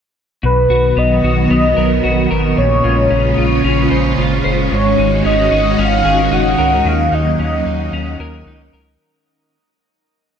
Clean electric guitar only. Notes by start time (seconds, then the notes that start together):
0.43 B2
0.70 F#4
0.97 B3
1.24 F#4
1.50 B3
1.77 A#4
2.04 F#4
2.31 A#4
2.57 A#2
2.84 F4
3.10 C#4
3.38 F4
3.64 C#4
3.91 C5
4.18 F4
4.44 C5
4.72 G#2
4.98 D#4
5.25 C#4
5.51 D#4
5.78 C#4
6.05 G#4
6.19 A#4
6.32 D#4
6.58 A#4
6.85 D#3
7.12 D#4
7.39 C#4
7.66 D#4
7.93 C#4
8.20 A#4
8.47 D#4
8.73 A#4